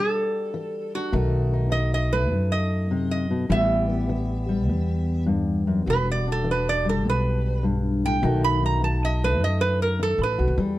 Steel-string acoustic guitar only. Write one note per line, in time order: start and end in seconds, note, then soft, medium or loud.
0.00 0.50 B2 medium
0.00 1.14 G3 medium
0.00 0.94 D4 medium
0.00 1.12 F#4 medium
0.54 1.09 E3 medium
0.96 1.12 D4 soft
1.12 1.68 B2 medium
1.12 1.69 D#3 medium
1.12 2.12 A3 medium
1.12 1.52 D#4 medium
1.12 3.49 F#4 medium
1.53 3.48 D#4 medium
1.70 2.27 D#3 medium
2.13 3.48 A3 medium
2.32 2.87 F#2 medium
2.91 3.30 C3 medium
3.31 3.49 B2 medium
3.49 4.05 A2 medium
3.49 4.09 E3 medium
3.49 4.48 G3 medium
3.49 3.89 B3 medium
3.49 5.85 G4 medium
3.90 6.27 B3 medium
4.09 4.65 E3 medium
4.49 6.84 G3 medium
4.69 5.24 E2 medium
5.26 5.67 G2 medium
5.67 5.86 F#2 medium
5.86 6.42 E2 medium
5.86 8.24 F#4 medium
6.27 8.21 D4 medium
6.44 7.00 E3 medium
6.85 8.22 G3 medium
7.05 7.60 B2 medium
7.63 8.03 G2 medium
8.05 8.21 A2 medium
8.22 8.77 B2 medium
8.22 8.80 D#3 medium
8.22 9.22 A3 medium
8.22 8.62 D#4 medium
8.22 10.37 F#4 medium
8.63 10.56 D#4 medium
8.81 9.37 D#3 medium
9.24 10.57 A3 medium
9.40 9.96 F#2 medium
10.00 10.55 D#3 medium
10.38 10.56 F#4 medium
10.58 10.79 E2 medium
10.58 10.79 G3 medium